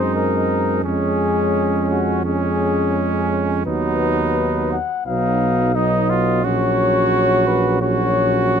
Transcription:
Already playing: F#2 G#3 C4 D#4 C5
0.15 A#4
0.84 F2 G#3 C#4 G#4
1.91 F#4
2.25 G#3 C#4 G#4
3.66 D#2 F#3 B3 D#4 B4
4.72 F#5
5.06 B1 F#3 B3 D#4 F5
5.75 F#3 B3 D#4 D#5
6.10 F4
6.44 A#1 F#3 C#4 F#4 C#5
7.48 B4
7.81 F#3 C#4 F#4 C#5

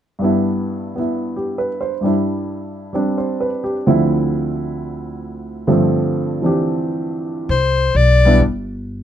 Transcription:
0.19 G2 G3 B3 D4
0.24 E4
0.96 B3 E4
1.36 G4
1.58 B4
1.81 C5
2.01 G2 G3 D4
2.06 E4
2.93 G3 C4 D4
3.18 C5
3.40 B4
3.64 G4
3.86 D2 D3 F3 C4 E4
5.67 G2 D3 F3 A3 C4
6.42 E3 C4 D4 G4
7.49 C2 C5
7.95 B1 D5
8.25 G3 B3 D4 E4
8.40 G1

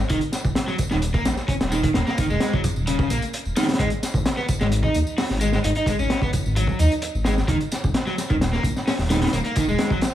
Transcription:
0.09 D#1 D#3, kick, closed hi-hat, tambourine
0.21 closed hi-hat, tambourine
0.32 snare, closed hi-hat, tambourine
0.45 D#1, kick, tambourine
0.55 snare, closed hi-hat, tambourine
0.68 F#3, snare, tambourine
0.78 kick, closed hi-hat, tambourine
0.91 D#1 D#3, snare, tambourine
1.02 closed hi-hat, tambourine
1.14 A#3, kick, tambourine
1.25 A#1, snare, closed hi-hat, tambourine
1.37 snare, tambourine
1.48 C#4, kick, closed hi-hat, tambourine
1.60 D#1, snare, closed hi-hat, tambourine
1.72 D#3, snare, tambourine
1.83 D#3, kick, closed hi-hat, tambourine
1.94 D#1 A#3, snare, closed hi-hat, tambourine
2.07 A#3, snare, tambourine
2.18 D#3, kick, closed hi-hat, tambourine
2.30 D#1 G#3, tambourine
2.40 snare, closed hi-hat, tambourine
2.53 F#3, kick
2.64 kick, closed hi-hat, tambourine
2.76 D#1, tambourine
2.87 C#3, closed hi-hat, tambourine
2.99 kick, tambourine
3.10 A#1 A#3, closed hi-hat, tambourine
3.22 closed hi-hat, tambourine
3.33 closed hi-hat, tambourine
3.45 D#1, tambourine
3.56 D#3, snare, closed hi-hat, tambourine
3.63 snare, closed hi-hat
3.68 snare, closed hi-hat, tambourine
3.74 snare, closed hi-hat
3.79 G#1 G#3, kick, closed hi-hat, tambourine
3.90 closed hi-hat, tambourine
4.03 snare, closed hi-hat, tambourine
4.14 G#1, kick, tambourine
4.25 snare, closed hi-hat, tambourine
4.37 B3, snare, tambourine
4.49 kick, closed hi-hat, tambourine
4.61 G#1 G#3, snare, tambourine
4.72 closed hi-hat, tambourine
4.83 D#4, kick, tambourine
4.94 D#2, closed hi-hat, tambourine
5.07 tambourine
5.18 F#4, snare, open hi-hat, tambourine
5.30 G#1, snare, tambourine
5.41 G#3, closed hi-hat, tambourine
5.53 G#3, snare, tambourine
5.64 G#1 D#4, closed hi-hat, tambourine
5.75 D#4, closed hi-hat, tambourine
5.86 G#3, kick, closed hi-hat, tambourine
5.99 G#1 C#4, tambourine
6.10 snare, closed hi-hat, tambourine
6.22 B3, kick, tambourine
6.33 kick, closed hi-hat, tambourine
6.46 G#1, tambourine
6.56 F#3, closed hi-hat, tambourine
6.67 kick, tambourine
6.79 D#2 D#4, closed hi-hat, tambourine
6.91 closed hi-hat, tambourine
7.02 closed hi-hat, tambourine
7.15 G#1, tambourine
7.25 G#3, snare, closed hi-hat, tambourine
7.37 snare, tambourine
7.48 D#1 D#3, kick, closed hi-hat, tambourine
7.60 closed hi-hat, tambourine
7.72 snare, closed hi-hat, tambourine
7.84 D#1, kick, tambourine
7.94 snare, closed hi-hat, tambourine
8.07 F#3, snare, tambourine
8.18 snare, closed hi-hat, tambourine
8.30 D#1 D#3, kick, tambourine
8.41 snare, closed hi-hat, tambourine
8.53 A#3, snare, tambourine
8.63 A#1, kick, closed hi-hat, tambourine
8.76 snare, tambourine
8.87 C#4, snare, open hi-hat, tambourine
8.99 D#1, snare, tambourine
9.10 D#3, snare, closed hi-hat, tambourine
9.16 snare, closed hi-hat
9.22 D#3, snare, closed hi-hat, tambourine
9.27 snare, closed hi-hat
9.33 D#1 A#3, closed hi-hat, tambourine
9.44 A#3, closed hi-hat, tambourine
9.56 D#3, kick, closed hi-hat, tambourine
9.68 D#1 G#3, tambourine
9.79 snare, closed hi-hat, tambourine
9.90 F#3, kick, tambourine
10.01 snare, closed hi-hat, tambourine

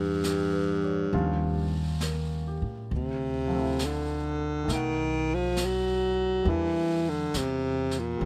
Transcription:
Already playing: E2 G2 G3 B3 D4 F#4
0.24 G4, snare, hi-hat pedal
0.53 B4
0.84 C#5
1.12 D#2 F3 G3 C#4 F4, brush sweep
2.01 A#4, snare, hi-hat pedal
2.47 G4
2.62 A2
2.90 D2, brush sweep
2.95 C3
3.48 F3 A3
3.55 C4
3.59 E4
3.79 snare, hi-hat pedal
3.84 D3
4.64 D#3 A3
4.68 B1 D#4, brush sweep, snare
4.73 D#3 F#5
5.34 F3
5.57 snare, hi-hat pedal
5.65 F#3
6.43 E2 G3 A#3 D4, brush sweep
6.48 E3 E4
7.09 D3
7.34 E2 C3, snare, hi-hat pedal
7.91 snare
7.99 A#2
8.17 D#2 G3 C4, brush sweep

